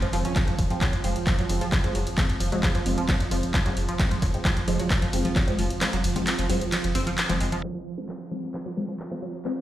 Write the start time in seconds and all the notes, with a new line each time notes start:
Already playing: F3
0.02 F1 F3, closed hi-hat
0.13 F1 F3 G#3 C4, open hi-hat
0.25 C#4, closed hi-hat
0.36 F3 G#3 C4, kick, clap, closed hi-hat, ride
0.48 F1 F3, closed hi-hat
0.59 F1, kick, open hi-hat
0.70 F3 G#3 C4, closed hi-hat
0.81 F#3, kick, clap, closed hi-hat, ride
0.93 F1, closed hi-hat
1.04 F1 F3 G#3 C4, open hi-hat
1.16 closed hi-hat
1.27 F3, kick, clap, closed hi-hat, ride
1.39 F1 F#3, closed hi-hat
1.49 F1 F3 G#3 C4, open hi-hat
1.61 F3, closed hi-hat
1.72 kick, clap, closed hi-hat, ride
1.84 F1 F3 G#3 C4, closed hi-hat
1.95 F1 F#3, open hi-hat
2.07 closed hi-hat
2.18 F3 G#3 C4, kick, clap, closed hi-hat, ride
2.30 F1, closed hi-hat
2.40 F1 F3, open hi-hat
2.52 F3 F#3 G#3 C4, closed hi-hat
2.63 kick, clap, closed hi-hat, ride
2.75 F1 F3, closed hi-hat
2.86 F1 F3 G#3 C4, open hi-hat
2.98 F3, closed hi-hat
3.09 F#3, kick, clap, closed hi-hat, ride
3.20 F1, closed hi-hat
3.31 F1 F3 G#3 C4, open hi-hat
3.43 closed hi-hat
3.54 F3, kick, clap, closed hi-hat, ride
3.66 F1 F3 F#3 G#3 C4, closed hi-hat
3.77 F1, open hi-hat
3.89 F3, closed hi-hat
3.99 F3 G#3 C4, kick, clap, closed hi-hat, ride
4.11 F1 F3, closed hi-hat
4.22 F1 F#3, kick, open hi-hat
4.34 F3 G#3 C4, closed hi-hat
4.45 F3, kick, clap, closed hi-hat, ride
4.57 F1, closed hi-hat
4.68 F1 F3 G#3 C4, open hi-hat
4.79 F#3, closed hi-hat
4.90 kick, clap, closed hi-hat, ride
5.02 F1 F3, closed hi-hat
5.13 F1 F3 G#3 C4, open hi-hat
5.25 F3, closed hi-hat
5.36 F#3, kick, clap, closed hi-hat, ride
5.48 F1 F3 G#3 C4, closed hi-hat
5.59 F1 F3, open hi-hat
5.70 closed hi-hat
5.81 F3 G#3 C4, clap, closed hi-hat, ride
5.93 F1 F#3, closed hi-hat
6.04 F1, open hi-hat
6.16 F3 G#3 C4, closed hi-hat
6.27 clap, closed hi-hat, ride
6.39 F1 F3, closed hi-hat
6.49 F1 F3 F#3 G#3 C4, open hi-hat
6.61 closed hi-hat
6.72 F3, clap, closed hi-hat, ride
6.84 F1, closed hi-hat
6.95 F1 F3 G#3 C4, open hi-hat
7.07 F3, closed hi-hat
7.18 clap, closed hi-hat, ride
7.29 F1 F3 G#3 C4, closed hi-hat
7.40 F1 G#3, open hi-hat
7.52 F3, closed hi-hat
7.63 F3 G#3 C4, clap, downlifter
7.75 F3
7.98 F3 G#3 C4, closed hi-hat
8.09 F#3, clap, closed hi-hat
8.20 closed hi-hat
8.31 F3 G#3 C4
8.43 closed hi-hat
8.54 F3, clap, closed hi-hat
8.66 F#3, closed hi-hat
8.77 F3 G#3 C4
8.89 F3, closed hi-hat
8.99 clap, closed hi-hat
9.11 F3 G#3 C4, closed hi-hat
9.22 F#3
9.34 closed hi-hat
9.45 F3 G#3 C4, clap, closed hi-hat
9.57 closed hi-hat